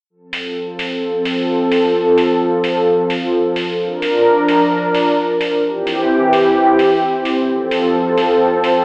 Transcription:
0.10 5.60 F3 medium
0.10 3.75 C4 medium
0.10 3.75 A4 medium
0.33 open hi-hat loud
0.79 open hi-hat medium
1.25 open hi-hat medium
1.72 open hi-hat medium
2.18 open hi-hat loud
2.64 open hi-hat loud
3.10 open hi-hat loud
3.56 open hi-hat medium
3.79 5.62 D4 medium
3.79 5.62 A#4 medium
4.02 open hi-hat loud
4.48 open hi-hat loud
4.95 open hi-hat loud
5.41 open hi-hat medium
5.64 7.47 E3 medium
5.64 8.85 C4 medium
5.64 7.47 G4 medium
5.87 open hi-hat loud
6.33 open hi-hat loud
6.79 open hi-hat loud
7.25 open hi-hat medium
7.48 8.85 F3 medium
7.48 8.85 A4 medium
7.71 open hi-hat medium
8.18 open hi-hat medium
8.64 open hi-hat medium

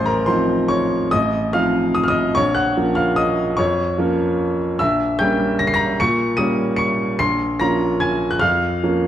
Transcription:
0.00 0.27 A1 medium
0.00 0.28 C5 medium
0.00 0.26 C6 medium
0.06 0.27 A#4 soft
0.06 0.27 A#5 medium
0.26 1.07 F3 soft
0.26 1.07 C4 soft
0.26 1.07 D#4 soft
0.26 0.67 C5 medium
0.26 0.69 C6 medium
0.68 1.08 C#5 medium
0.68 1.11 C#6 medium
1.11 1.53 A1 medium
1.11 1.50 D#5 medium
1.11 1.53 D#6 medium
1.53 2.32 F3 soft
1.53 2.32 C4 soft
1.53 2.33 D#4 soft
1.53 1.92 F5 medium
1.53 1.95 F6 medium
1.95 2.02 D#6 medium
2.04 2.09 F6 medium
2.08 2.35 D#5 medium
2.08 2.35 D#6 medium
2.35 2.75 A#1 medium
2.35 2.55 C#5 medium
2.35 2.55 C#6 loud
2.55 2.94 F#5 medium
2.55 2.96 F#6 medium
2.77 3.55 F3 soft
2.77 3.55 A#3 soft
2.77 3.55 C#4 soft
2.95 3.16 F5 medium
2.95 3.17 F6 medium
3.16 3.55 D#5 medium
3.16 3.58 D#6 medium
3.57 3.97 F2 medium
3.57 4.56 C#5 medium
3.57 4.59 C#6 medium
3.98 4.76 F3 soft
3.98 4.77 A#3 soft
3.98 4.77 C#4 medium
4.79 5.19 A#1 medium
4.79 5.17 E5 medium
4.79 5.19 E6 medium
5.19 5.95 G3 soft
5.19 5.95 A#3 soft
5.19 5.95 C#4 soft
5.19 5.57 G5 medium
5.19 5.59 G6 medium
5.59 5.66 A#6 medium
5.67 5.73 C7 medium
5.74 5.98 A#5 medium
5.74 5.99 A#6 medium
6.00 6.37 A#2 medium
6.00 6.35 C#6 medium
6.00 6.38 C#7 loud
6.37 7.15 G3 soft
6.37 7.15 A#3 soft
6.37 7.15 C#4 soft
6.37 6.75 D#6 medium
6.37 6.78 D#7 medium
6.76 7.16 C#6 medium
6.76 7.18 C#7 medium
7.19 7.58 A#1 medium
7.19 7.57 C6 medium
7.19 7.59 C7 loud
7.60 8.38 F3 soft
7.60 8.38 A#3 soft
7.60 8.38 C#4 soft
7.60 7.99 A#5 medium
7.60 8.01 A#6 medium
8.00 8.29 G#5 medium
8.00 8.31 G#6 medium
8.31 8.41 F#6 medium
8.39 8.81 F2 medium
8.39 9.07 F5 medium
8.39 9.07 F6 medium
8.83 9.07 F3 soft
8.83 9.07 A#3 soft
8.83 9.07 C#4 soft

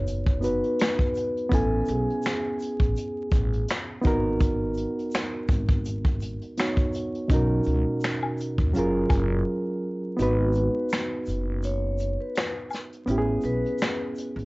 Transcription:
0.00 0.59 F#1 medium
0.00 0.38 B3 medium
0.00 0.39 D#4 medium
0.00 0.40 F#4 medium
0.00 0.41 B4 medium
0.00 0.40 C#5 medium
0.07 closed hi-hat medium
0.07 shaker medium
0.26 kick medium
0.41 1.48 B3 medium
0.41 1.51 D#4 soft
0.41 1.51 F#4 soft
0.41 1.52 B4 medium
0.41 1.48 B4 medium
0.41 closed hi-hat medium
0.41 shaker medium
0.64 closed hi-hat soft
0.79 finger snap medium
0.79 snare loud
0.79 closed hi-hat medium
0.79 shaker medium
0.99 kick medium
1.14 closed hi-hat medium
1.14 shaker soft
1.37 closed hi-hat soft
1.49 1.82 A1 medium
1.49 3.99 B3 medium
1.49 4.00 C#4 medium
1.49 4.01 E4 medium
1.49 1.88 A4 loud
1.49 kick loud
1.49 closed hi-hat medium
1.49 shaker medium
1.54 4.02 G#5 medium
1.85 2.05 B1 medium
1.85 3.65 G#4 medium
1.85 closed hi-hat medium
1.85 shaker soft
2.10 closed hi-hat soft
2.22 finger snap medium
2.22 snare loud
2.22 closed hi-hat medium
2.22 shaker medium
2.59 closed hi-hat medium
2.59 shaker soft
2.80 2.94 A1 medium
2.80 kick medium
2.80 closed hi-hat soft
2.96 closed hi-hat medium
2.96 shaker medium
3.31 3.63 A1 loud
3.31 kick loud
3.31 closed hi-hat medium
3.31 shaker medium
3.53 closed hi-hat soft
3.68 finger snap medium
3.68 snare loud
3.68 closed hi-hat medium
3.68 shaker medium
4.02 4.84 G#1 medium
4.02 6.52 B3 medium
4.02 6.53 D#4 medium
4.02 6.54 F#4 medium
4.02 kick medium
4.02 closed hi-hat medium
4.02 shaker soft
4.07 6.55 A#4 medium
4.40 kick loud
4.40 closed hi-hat medium
4.40 shaker medium
4.74 closed hi-hat medium
4.74 shaker soft
4.99 closed hi-hat soft
5.11 finger snap medium
5.11 snare loud
5.11 closed hi-hat medium
5.11 shaker medium
5.48 6.37 G#1 medium
5.48 kick loud
5.48 closed hi-hat medium
5.48 shaker medium
5.69 kick medium
5.85 closed hi-hat medium
5.85 shaker medium
6.05 kick medium
6.20 closed hi-hat medium
6.20 shaker medium
6.42 closed hi-hat soft
6.57 7.30 B3 soft
6.57 7.30 D#4 soft
6.57 7.31 F#4 medium
6.57 7.31 C#5 medium
6.57 finger snap medium
6.57 snare loud
6.57 closed hi-hat medium
6.57 shaker medium
6.77 kick medium
6.93 closed hi-hat medium
6.93 shaker soft
7.15 closed hi-hat soft
7.28 7.61 B1 loud
7.28 8.70 B2 medium
7.28 8.71 C#4 medium
7.28 8.72 D#4 medium
7.28 kick loud
7.28 closed hi-hat medium
7.28 shaker medium
7.33 8.73 F#4 medium
7.33 8.73 A#4 medium
7.64 7.83 C#2 medium
7.64 closed hi-hat medium
7.64 shaker soft
8.00 finger snap loud
8.00 closed hi-hat medium
8.00 shaker medium
8.04 snare loud
8.22 high woodblock medium
8.37 closed hi-hat medium
8.37 shaker medium
8.58 8.72 D#2 medium
8.58 kick medium
8.73 9.05 F#1 loud
8.73 10.15 F#3 medium
8.73 10.16 C#4 medium
8.73 10.17 F4 medium
8.73 10.17 G#4 medium
8.73 closed hi-hat medium
8.73 shaker medium
8.78 10.18 A#4 medium
9.09 9.41 F#1 loud
9.09 kick loud
9.09 closed hi-hat medium
9.09 high woodblock medium
9.09 shaker medium
10.17 10.67 G#1 loud
10.17 13.03 B3 medium
10.17 13.04 D#4 medium
10.17 13.05 F#4 medium
10.17 closed hi-hat medium
10.17 shaker medium
10.22 13.06 B4 medium
10.53 closed hi-hat soft
10.53 shaker soft
10.57 11.09 B4 medium
10.89 finger snap medium
10.89 snare loud
10.89 closed hi-hat medium
10.89 shaker medium
11.26 12.16 F#1 medium
11.26 closed hi-hat medium
11.26 shaker medium
11.63 12.20 C#5 medium
11.63 closed hi-hat medium
11.63 shaker medium
11.98 closed hi-hat medium
11.98 shaker soft
12.21 12.53 B4 medium
12.36 finger snap medium
12.36 snare loud
12.36 closed hi-hat medium
12.36 shaker medium
12.71 snare soft
12.71 closed hi-hat medium
12.71 high woodblock medium
12.71 shaker soft
12.93 closed hi-hat soft
13.06 13.39 A1 loud
13.06 14.45 B3 medium
13.06 14.45 C#4 medium
13.06 closed hi-hat medium
13.06 shaker medium
13.10 14.45 E4 medium
13.10 13.17 G4 medium
13.18 14.45 G#4 medium
13.41 13.61 B1 medium
13.41 13.97 B4 medium
13.41 closed hi-hat medium
13.41 shaker soft
13.66 closed hi-hat soft
13.78 finger snap medium
13.78 snare loud
13.78 closed hi-hat medium
13.78 shaker medium
14.15 closed hi-hat medium
14.15 shaker soft
14.36 14.45 A1 medium
14.36 closed hi-hat soft

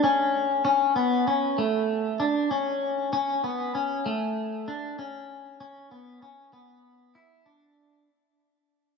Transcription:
0.04 0.64 C#4 medium
0.65 0.95 C#4 medium
0.96 1.27 B3 medium
1.27 1.58 C#4 medium
1.58 2.20 A3 medium
2.20 2.50 D4 medium
2.51 3.12 C#4 medium
3.13 3.43 C#4 medium
3.44 3.74 B3 medium
3.75 4.05 C#4 medium
4.06 4.67 A3 medium
4.68 4.98 D4 medium
4.99 5.59 C#4 medium
5.60 5.91 C#4 medium
5.91 6.22 B3 medium
6.22 6.53 C#4 medium
6.53 7.15 B3 medium
7.15 7.46 E4 medium
7.46 8.07 D4 medium

